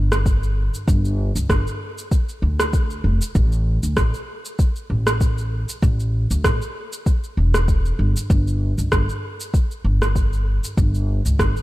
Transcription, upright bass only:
Already playing: G1
0.88 G1
1.36 C#2
1.49 G1
2.42 D2
3.04 F1
3.35 A1
3.83 D2
3.97 A1
4.90 A1
5.82 A1
6.31 D2
6.44 A1
7.37 E1
7.99 G1
8.30 G1
8.78 C#2
8.92 G1
9.84 G1
10.77 G1
11.25 C#2
11.39 G1

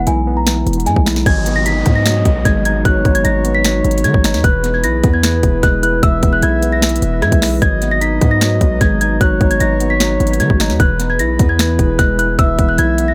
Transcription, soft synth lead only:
1.26 D#5
2.85 C#5
4.44 B4
6.03 E5
7.62 D#5
9.21 C#5
10.80 B4
12.39 E5

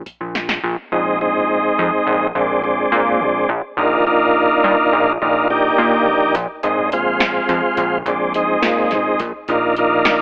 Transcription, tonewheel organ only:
0.92 G#3 C4 D#4
1.21 G#3 C4 D#4
2.36 G#3 C4 D4
2.64 G#3 C4 D4
3.78 A#3 D4 D#4 F4
4.07 A#3 D4 D#4 F4
5.22 A#3 D4 D#4 F4
5.50 A#3 D4 D#4 G4
6.63 G#3 C4 D#4
6.93 G#3 C4 F4
8.07 G#3 C4 D4
8.35 G#3 C4 D#4
9.49 A#3 D4 D#4 F4
9.78 A#3 D4 D#4 F4

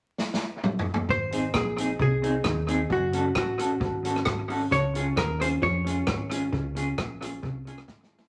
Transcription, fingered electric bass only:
1.09 G#1
1.54 A#1
2.00 C2
2.45 D#2
3.36 A1
3.81 G#1
4.26 G#1
4.72 C#2
5.17 D#2
5.63 F2
6.08 G#1
6.53 C#2
6.98 A#1
7.43 C2
7.88 G#1

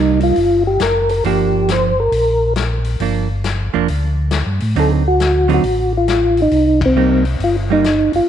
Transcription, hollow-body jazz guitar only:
Already playing: G3 A#3 D#4
1.25 F3 A#3 D4
3.01 F3 A#3 D4
3.74 F3 A#3 D4
4.76 D3 F#3 C4 D#4
5.48 D3 F#3 C4 D#4
6.97 G3 A#3 D#4
7.70 G3 A#3 D#4

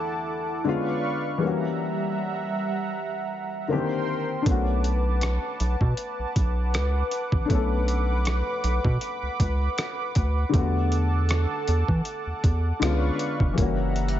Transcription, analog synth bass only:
4.46 B1
5.60 B1
5.81 B2
6.19 B1
6.36 B1
6.74 C#2
7.33 A1
7.50 B1
8.64 B1
8.85 B2
9.23 C#2
9.40 C#2
10.16 D2
10.54 E2
11.68 E2
11.89 E3
12.27 E2
12.44 E2
12.82 C#2
13.40 F1
13.58 F#1

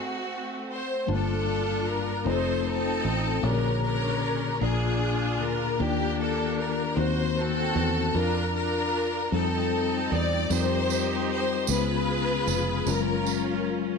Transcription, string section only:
Already playing: A3 C4 F#4
0.71 C5
1.11 D4 F4 A4
1.87 A#4
2.28 D#4 A4 C5
2.67 C4 D#4 A4
3.45 C#4 D4 A#4
3.84 C#4 D4 A#4
4.64 D4 F4 G#4
5.41 A#4
5.80 A#3 D4 G4
6.21 A4
6.60 A#4
6.98 F#4 C5
7.39 C4 F#4 A4
8.16 D4 F4 A#4
8.55 D4 F4 A#4
9.35 C4 D#4 A4
10.13 D5
10.52 D#4 G4 C5
11.31 C5
11.72 F4 G#4 B4
12.90 C#4 F4 A#4

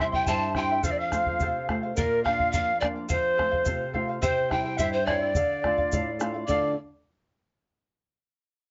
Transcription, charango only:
Already playing: C5
0.00 E4 E5 C6
0.12 E4 E5 C6
0.27 E4 G4 C5 E5 C6
0.56 E4 C5 E5 C6
0.70 E4 E5 C6
0.83 A4 C5 F5
1.11 A4 C5 F5
1.26 C5 F5
1.41 A4 C5 F5
1.68 A4 C5 F5
1.83 C5 F5
1.97 A#4 D5 F5
2.26 A#4 D5 F5
2.39 D5 F5
2.53 A#4 D5 F5
2.80 A#4 D5 F5
2.96 D5 F5
3.08 A4 C5 F5
3.37 A4 C5 F5
3.51 C5 F5
3.66 A4 C5 F5
3.93 A4 C5 F5
4.09 C5 F5
4.22 E4 G4 C5 E5 G5
4.50 E4 C5 E5 G5
4.65 E4 C5 G5
4.79 E4 G4 C5 E5 G5
5.07 E4 C5 E5 G5
5.22 E4 C5 G5
5.35 A4 D5 F5
5.64 A4 D5 F5
5.78 D5 F5
5.93 A4 D5 F5
6.19 A4 D5 F5
6.34 D5 F5
6.48 A4 D5 F5

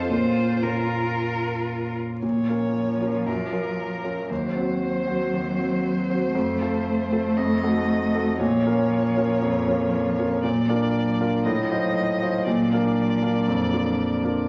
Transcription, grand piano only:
Already playing: F2 C4 D#4 A4
0.10 A#2 A#3 C#4 A#4
0.62 A#2 A#3 C#4 A#4
2.23 A#2
2.49 C#4 F4 A#4
3.01 C#4 F4 A#4
3.26 F#2
3.52 C#4 F4 A#4
4.04 C#4 F4 A#4
4.30 D#2
4.56 C4 F#4 C5
5.07 C4 F#4 C5
5.34 D#2
5.58 C4 F#4 C5
6.10 C4 F#4 C5
6.35 F2
6.61 C4 F4 A4
7.12 C4 F4 A4
7.38 F2
7.63 D#4 F#4 A4
8.15 D#4 F#4 A4
8.40 A#2
8.65 C#4 F4 A#4
9.16 C#4 F4 A#4
9.42 F2
9.67 C#4 F4 A#4
10.18 C#4 F4 A#4
10.44 A#2
10.69 D4 F4 A#4
11.20 D4 F4 A#4
11.46 A2
11.71 D#4 F4 C5
12.22 D#4 F4 C5
12.47 A#2
12.72 D4 F4 A#4
13.22 D4 F4 A#4
13.48 F2
13.73 D4 F4 A#4
14.24 D4 F4 A#4

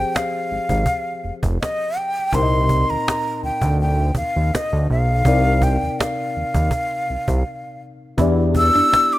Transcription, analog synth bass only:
0.52 G#1
0.70 G#1
1.24 F1
1.43 F1
2.33 C2
2.91 D2
3.43 D2
3.62 D2
4.15 D#2
4.36 D#2
4.73 D2
4.90 B1
5.26 C2
5.83 D#2
6.37 D#2
6.55 D#2
7.10 C2
7.28 C2
8.18 E2
8.76 F#2

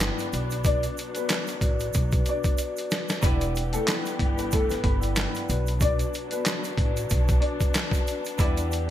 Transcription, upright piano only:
Already playing: B3 B4
0.65 D4 D5
1.16 B3 B4
2.29 D4 D5
3.23 D4 D5
3.73 A3 A4
3.87 B3 B4
4.38 B3 B4
4.52 A3 A4
4.69 B3 B4
4.83 B3 B4
5.82 D4 D5
6.32 B3 B4
7.40 D4 D5
8.40 D4 D5

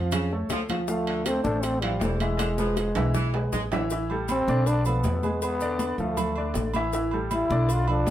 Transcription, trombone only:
Already playing: C4
0.90 A3
1.26 C4
1.44 D4
1.61 C4
1.80 G3
2.19 G#3
4.31 C4
4.68 D4
4.88 B3
5.44 B3
6.01 A3
7.33 E4
7.72 F4
7.90 D4

